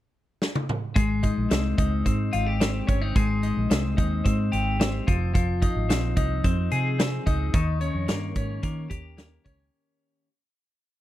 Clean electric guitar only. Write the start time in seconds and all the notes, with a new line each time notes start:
0.96 G#3
1.23 D#4
1.50 C4
1.78 D#4
2.06 C4
2.33 F4
2.46 G4
2.60 C4
2.87 C#4
3.02 D#4
3.16 G#3
3.43 D#4
3.70 C4
3.97 D#4
4.25 C4
4.52 G4
4.80 C4
5.07 F3
5.34 F3
5.62 D#4
5.89 C4
6.17 D#4
6.44 C4
6.72 G#4
6.99 C4
7.26 D#4
7.54 D#3
7.81 C#4
8.08 A#3
8.36 C#4
8.63 A#3
8.90 G4
9.17 A#3
9.45 C#4